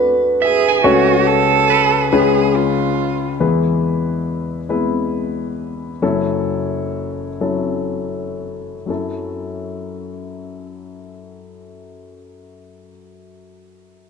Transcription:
Already playing: D2 D3 A3 D4 F#4 B4
0.42 G#4 E5
0.68 G#5
0.84 C#2 C#3 A3 C#4 F#4 C#5
1.27 A4
1.70 B4
2.12 C#2 C#3 G#3 C#4 F4 G#4 B4
2.55 F4
3.40 E2 E3 G#3 B3 E4 B4
4.69 G#3 B3 E4 B4
6.02 F#1 F#2 F#3 C#4 E4 A4
7.41 F#3 C#4 E4 A4
8.86 F#2 F#3 C#4 E4
8.90 A4

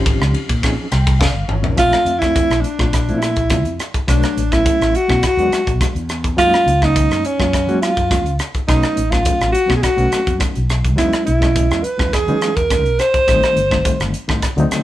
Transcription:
Already playing: G#1 F3 C4 C#4 D#4 G4
0.06 kick, ride
0.21 C#2, cross-stick
0.34 ride
0.49 A#2, kick, ride
0.62 F3 C4 C#4 D#4 G#4, kick, cross-stick, ride
0.91 C2 D#4 A#4 G5, cross-stick, ride
1.07 kick, ride
1.19 F1 F5, kick, snare
1.35 G1
1.47 G#1 D#4 F4 C#5, mid tom
1.62 A#1 F3 C4 C#4 D#4 A#4, floor tom
1.77 A#1 F3 A3 C4 D4 F4 E5, kick, cross-stick, closed hi-hat
1.92 cross-stick, closed hi-hat
2.05 F2, closed hi-hat
2.19 F3 A3 E4, kick, cross-stick, closed hi-hat
2.23 C4 D4 E4
2.36 kick, closed hi-hat
2.50 A#1, cross-stick, closed hi-hat
2.61 D4, closed hi-hat
2.78 A#1 F3 A3 C4 D4 F4, kick, cross-stick
2.93 kick, cross-stick, closed hi-hat
3.08 A#2 F3 A3 C4 D4 E4, closed hi-hat
3.19 E4, cross-stick, closed hi-hat
3.36 A#1, kick, closed hi-hat
3.50 F3 A3 C4 D4 F4, kick, cross-stick, closed hi-hat
3.65 F2 D4 E4, closed hi-hat
3.79 cross-stick, closed hi-hat
3.94 muted fretless electric bass stroke, kick, closed hi-hat
4.07 B1 F#3 A3 B3 D4 C#5, kick, cross-stick, closed hi-hat
4.23 cross-stick, closed hi-hat
4.37 A1, closed hi-hat
4.51 F#3 A3 B3 C#4 E4, kick, cross-stick, closed hi-hat
4.66 kick, closed hi-hat
4.81 A1, cross-stick, closed hi-hat
4.95 F#4, closed hi-hat
5.08 B2 F#3 A3 B3 C#4 E4, kick, cross-stick
5.22 D4, kick, cross-stick, closed hi-hat
5.26 F#4
5.37 E2 F#3 G#3 B3 D4 F#4, closed hi-hat
5.52 muted fretless electric bass stroke, cross-stick, closed hi-hat
5.67 B1 F#4, kick, closed hi-hat
5.80 F#3 G#3 B3 D4 F#4, kick, cross-stick, closed hi-hat
5.94 E2 D4 E4, closed hi-hat
6.09 cross-stick, closed hi-hat
6.24 kick, closed hi-hat
6.37 F#2 F#3 G#3 A#3 C#4 D#4 F4, kick, cross-stick, closed hi-hat
6.53 cross-stick, closed hi-hat
6.66 C#2, closed hi-hat
6.81 F#3 G#3 A#3 C#4 D#4, kick, cross-stick, closed hi-hat
6.96 kick, closed hi-hat
7.10 F#2, cross-stick, closed hi-hat
7.25 C#4, closed hi-hat
7.39 F#2 F#3 G#3 A#3 C#4 F4, kick, cross-stick
7.52 C#4 F#4, kick, cross-stick, closed hi-hat
7.67 F#3 G#3 A#3 C#4 F#4, closed hi-hat
7.82 F4, cross-stick, closed hi-hat
7.97 F#2, kick, closed hi-hat
8.10 F#3 G#3 A#3 C#4 F4, kick, cross-stick, closed hi-hat
8.25 C#2 C#4 F4, closed hi-hat
8.39 cross-stick, closed hi-hat
8.54 muted fretless electric bass stroke, kick, closed hi-hat
8.68 B1 F#3 A3 B3 C#4 D#4, kick, cross-stick, closed hi-hat
8.83 cross-stick, closed hi-hat
8.97 A1, closed hi-hat
9.10 F#3 A3 B3 C#4 F4, kick, cross-stick, closed hi-hat
9.25 kick, closed hi-hat
9.40 A1, cross-stick, closed hi-hat
9.52 F#4, closed hi-hat
9.66 B2 F#3 A3 B3 C#4 F#4, kick
9.70 cross-stick
9.77 G#4
9.81 C#4 D#4 F#4, muted fretless electric bass stroke, kick, cross-stick, closed hi-hat
9.96 B1 F#3 A3 B3 C#4 F#4, closed hi-hat
10.12 cross-stick, closed hi-hat
10.27 F#2, kick, closed hi-hat
10.38 F#3 A3 B3 C#4 D#4, kick, cross-stick, closed hi-hat
10.54 B1 C#4 F#4, closed hi-hat
10.70 cross-stick, closed hi-hat
10.85 kick, closed hi-hat
10.96 E2 F#3 G#3 B3 C#4 D#4 E4, kick, cross-stick, closed hi-hat
11.13 cross-stick, closed hi-hat
11.26 B1 E4, closed hi-hat
11.40 F#3 G#3 B3 C#4 D#5, kick, cross-stick, closed hi-hat
11.56 kick, closed hi-hat
11.71 E2, cross-stick, closed hi-hat
11.84 B4, closed hi-hat
11.98 E2 F#3 G#3 B3 C#4 E4, kick, cross-stick
12.12 C#4 E4 G#4, kick, cross-stick, closed hi-hat
12.27 E3 F#3 G#3 B3 C#4 D#4, closed hi-hat
12.42 cross-stick, closed hi-hat
12.56 E2 C#4 F#4 A#4, kick, closed hi-hat
12.70 F#3 G#3 B3 C#4 D#4, kick, cross-stick, closed hi-hat
12.85 B1 C#4 D#4, closed hi-hat
12.99 C5, cross-stick, closed hi-hat
13.14 muted fretless electric bass stroke, kick, closed hi-hat
13.27 A1 D#3 G3 A3 C4 D#4, kick, cross-stick, closed hi-hat
13.43 cross-stick, closed hi-hat
13.56 G1, closed hi-hat
13.71 D#3 G3 A3 C4 D#4, kick, cross-stick, closed hi-hat
13.85 kick, closed hi-hat
14.00 G1, cross-stick, closed hi-hat
14.14 closed hi-hat
14.28 A2 D#3 G3 A3 C4 D#4, kick, cross-stick
14.42 C4 D#4, muted fretless electric bass stroke, kick, cross-stick, closed hi-hat
14.56 D2 D3 F#3 A3 C4 D#4, closed hi-hat
14.71 cross-stick, closed hi-hat

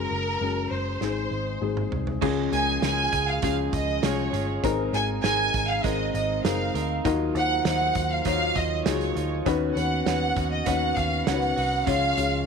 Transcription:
Already playing: G#3 C#4 F#4 G#4 A#4
0.11 F#1
0.40 F#1 G#3 C#4 F#4 G#4
0.71 F#1 C5
1.01 G#1 G#2 G#3 C4 D#4 G#4, snare
1.31 G#1
1.61 G#1 G#3 C4 D#4 G#4
1.77 mid tom
1.92 C2, floor tom
2.07 floor tom
2.21 C#2 C#3 F3 G#3 C#4 F4 G#4, kick, crash
2.52 C#2 G#3 C#4 F4 A#4 G#5, closed hi-hat
2.82 C#2 F3 G#3 C#4 F4 G#4 A#4 G#5, snare, closed hi-hat
3.12 C#2 G#3 F4 G#4, kick, closed hi-hat
3.28 F5
3.42 C#2 C#3 F3 G#3 C#4 F4 G#4 F5, kick, closed hi-hat
3.73 C#2 D#5, kick, closed hi-hat
4.03 C2 F3 G#3 C#4 F4 G#4 C#5, snare, closed hi-hat
4.33 G1 G#3 F4 G#4, closed hi-hat
4.63 G#1 G#2 G#3 C4 D#4 G#4 A#4, kick, closed hi-hat
4.93 G#1 C4 D#4 G#4 A#4 G#5, closed hi-hat
5.23 G#1 G#3 C4 D#4 G#4 A#4 G#5, snare, closed hi-hat
5.54 G#1, kick, closed hi-hat
5.69 F5
5.84 G#1 G#3 C4 D#4 G#4 A#4 D#5, kick, closed hi-hat
6.14 G#1 D#5, closed hi-hat
6.44 F#1 G#3 C4 D#4 G#4 A#4 F5, snare, closed hi-hat
6.74 D2 C4 D#4 A#4, closed hi-hat
7.05 D#2 D#3 F#3 A#3 D#4 F4 F#4 A#4, kick, closed hi-hat
7.35 D#2 D#4 F4 F#4 C5 F#5, closed hi-hat
7.65 D#2 F#3 A#3 D#4 F4 C5 F#5, snare, closed hi-hat
7.95 D#2, kick, closed hi-hat
8.11 F5
8.25 D#2 D#3 F#3 A#3 D#4 F4 C#5 F5, kick, closed hi-hat
8.55 D#2 D#5, kick, closed hi-hat
8.85 C#2 F#3 A#3 D#4 F4 G#4 C#5, snare, closed hi-hat
9.01 closed hi-hat
9.16 D2 A#3 D#4 F4, closed hi-hat
9.46 D#2 D#3 B3 C#4 D#4 F#4 B4, kick, closed hi-hat
9.76 D#2 C#4 D#4 F#4 B4 F#5, closed hi-hat
10.06 D#2 D#3 B3 C#4 D#4 F#4 B4 F#5, snare, closed hi-hat
10.36 D#2 B3 C#4 F#4, kick, closed hi-hat
10.52 D#5
10.66 D#2 D#3 B3 C#4 D#4 F#4 B4 F#5, kick, closed hi-hat
10.96 D#2 F5, kick, closed hi-hat
11.26 C#2 D#3 B3 C#4 D#4 F#4 A#4 F#5, snare, closed hi-hat
11.34 B4
11.42 closed hi-hat
11.56 C2 B3 C#4 F#4, open hi-hat
11.86 C#2 C#3 F3 G#3 C#4 F4 G#4 C#5 F5, kick, closed hi-hat, tambourine
12.03 tambourine
12.17 C#2 C#4 F4 G#4 C#5, closed hi-hat, tambourine

